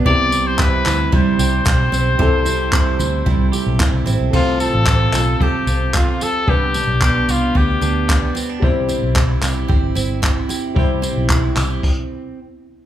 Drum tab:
CC |--------|--------|x-------|--------|
TB |-x-x-x-x|-x-x-x-x|-x-x-x-x|-x-x-x-x|
CP |--xx--x-|--x---x-|--xx--x-|--x---x-|
BD |o-o-o-o-|o-o-o-o-|o-o-o-o-|o-o-o-o-|

CC |--------|----x---|
TB |-x-x-x-x|-x-x----|
CP |--xx--x-|--xx----|
BD |o-o-o-o-|o-o-o---|